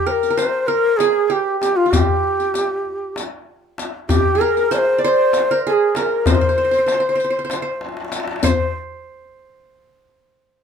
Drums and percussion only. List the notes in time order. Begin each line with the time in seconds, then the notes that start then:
0.23 riq
0.38 riq, darbuka tek
0.68 darbuka ka
0.99 riq, darbuka tek
1.62 riq, darbuka tek
1.93 riq, darbuka dum
2.40 riq
2.54 riq, darbuka tek
2.85 darbuka ka
3.16 riq, darbuka tek
3.78 riq, darbuka tek
4.09 riq, darbuka dum
4.57 riq
4.72 riq, darbuka tek
5.33 riq, darbuka tek
5.95 riq, darbuka tek
6.26 riq, darbuka dum
6.73 riq
6.88 riq, darbuka tek
7.20 riq
7.50 riq, darbuka tek
7.81 darbuka tek
7.89 darbuka ka
7.97 darbuka tek
8.05 darbuka ka
8.12 riq, darbuka tek
8.20 darbuka ka
8.28 darbuka tek
8.36 darbuka ka
8.43 riq, darbuka dum